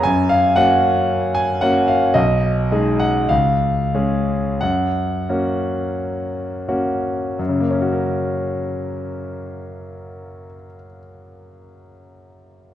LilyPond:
\new Staff \with { instrumentName = "Grand piano" } { \time 2/4 \key fis \major \tempo 4 = 45 << { gis''16 eis''16 fis''8. gis''16 fis''16 eis''16 | dis''8. fis''16 eis''4 | fis''4. r8 | <fis, cis ais cis' fis' ais'>2~ |
<fis, cis ais cis' fis' ais'>2 | } \\ { fis,8 <ais cis' fis'>4 <ais cis' fis'>8 | b,,8 <gis dis' gis'>8 cis,8 <gis cis' gis'>8 | fis,8 <ais cis' fis'>4 <ais cis' fis'>8 | r2 |
r2 | } >> }